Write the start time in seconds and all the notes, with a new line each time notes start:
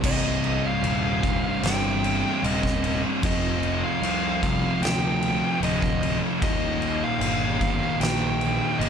0.03 C1 C2 G2 C3 D#5, kick, crash
0.44 crash
0.66 F5
0.82 D#1, crash
1.23 C2 G2 C3, kick, crash
1.62 G1 G5, snare, crash
2.04 crash
2.43 D#1 C2 G2 C3 D#5, crash
2.63 kick, snare
2.84 crash
3.23 F1 F2 C3 F3 D#5, kick, crash
3.63 crash
3.84 F5
4.01 C2, crash
4.42 F2 C3 F3, kick, crash
4.81 D2 G5, crash
4.85 snare
5.22 crash
5.60 D1 F2 C3 F3 D#5, crash
5.82 kick
6.03 crash
6.42 D#1 D#2 A#2 D#3 D#5, kick, crash
6.82 crash
7.04 F5
7.20 G1, crash
7.61 D#2 A#2 D#3, kick, crash
8.00 A#1 G5, snare, crash
8.41 crash
8.79 G1 D#2 A#2 D#5, crash
8.83 D#3